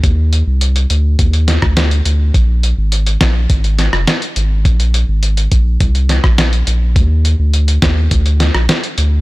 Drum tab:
HH |x-x-xxx-xxx-xxx-|x-x-xxx-xxx-xxx-|xxx-xxx-xxx-xxx-|x-x-xxx-xxx-xxx-|
SD |----------oro---|------o---oro---|----------oro---|------o---oro---|
BD |o-------o--o----|o-----o-o-------|o-----o-o--o----|o-----o-o-------|